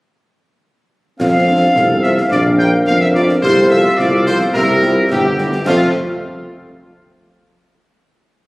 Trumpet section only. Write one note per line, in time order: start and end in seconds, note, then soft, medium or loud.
1.20 2.00 F5 medium
2.03 2.16 E5 medium
2.31 2.43 D5 medium
2.59 2.71 G5 medium
2.86 2.99 F5 medium
3.01 3.08 E5 medium
3.15 3.28 D5 medium
3.43 3.69 C5 medium
3.70 3.96 E5 medium
3.98 4.26 D5 medium
4.27 4.39 C5 medium
4.54 5.06 A#4 medium
5.11 5.63 G4 medium
5.67 5.90 F4 medium